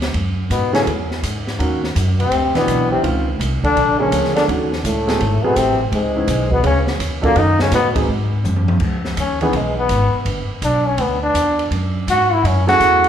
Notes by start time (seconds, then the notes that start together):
Already playing: D2
0.02 snare, ride
0.14 F#2, kick, ride
0.50 G#2 B2 B3, kick, hi-hat pedal, ride
0.73 C#3 F#3 A3 C#4 E4 G#4, snare, ride
0.87 E2, kick, ride
1.11 snare
1.23 G#2, kick, hi-hat pedal, ride
1.47 snare
1.59 D#2 D#3 A#3 C#4 F#4, kick, ride
1.84 snare
1.95 F#2, kick, hi-hat pedal, ride
2.19 C3 C4, ride
2.31 D2, kick, ride
2.55 B2 E3 B3 D4 E4, snare, ride
2.67 B1, kick, hi-hat pedal, ride
2.91 C3 C4
3.02 C#2 D#3 C4 C#4 F4, kick, ride
3.39 C2, kick, hi-hat pedal, ride
3.63 D3 D4, muted upright bass stroke, kick, ride
3.76 A#1, kick, ride
3.99 C#3 F3 G#3 A#3 C#4 G#4
4.12 D2, kick, hi-hat pedal, ride
4.24 snare
4.35 D3 D4, snare, ride
4.47 D#2 D#3 A3 C#4 F#4, kick, ride
4.72 snare
4.84 C#2 A2 A3, kick, hi-hat pedal, ride
5.07 F#3 A3 C4 G#4, snare, ride
5.20 G#1, kick, ride
5.43 B2 F#3 A3 B3 C4 G#4, muted upright bass stroke
5.56 A1 C3 C4, kick, hi-hat pedal, ride
5.92 C#2 G#2 G#3, kick, ride
6.16 D#3 B3 C#4 E4
6.28 B1, kick, hi-hat pedal, ride
6.50 B2 B3, kick
6.63 D2 C#3 C#4, kick, ride
6.87 snare
6.99 E2, kick, hi-hat pedal, ride
7.22 A#2 F#3 A#3 C#4 D#4 A4, kick, ride
7.36 F#2 D#3 D#4, kick, ride
7.59 C#3 C#4, snare
7.71 A2 B2 B3, kick, snare, hi-hat pedal, ride
7.95 F#3 C4 D#4 G#4, kick, ride
8.08 G#2, kick
8.44 F#2, hi-hat pedal, high tom
8.56 high tom
8.68 high tom
8.80 C#2, kick, crash
9.05 snare
9.17 D#2 C#4, kick, hi-hat pedal, ride
9.41 E3 B3 C#4 D#4 G#4, ride
9.53 B1 G#3, kick, ride
9.78 B3
9.89 G#1, kick, hi-hat pedal, ride
10.14 muted upright bass stroke
10.25 G1, kick, ride
10.48 muted upright bass stroke
10.62 B1 D4, kick, hi-hat pedal, ride
10.87 C#4
10.98 D2 B3, kick, ride
11.23 D4
11.34 E2, kick, hi-hat pedal, ride
11.59 ride
11.71 F#2, kick, ride
12.07 G#2 F#4, kick, hi-hat pedal, ride
12.33 E4
12.43 F#2, kick, ride
12.48 C#4
12.67 F#3 A3 C#4 E4 F#4 G#4, snare, ride
12.80 E2, kick, hi-hat pedal, ride
13.04 ride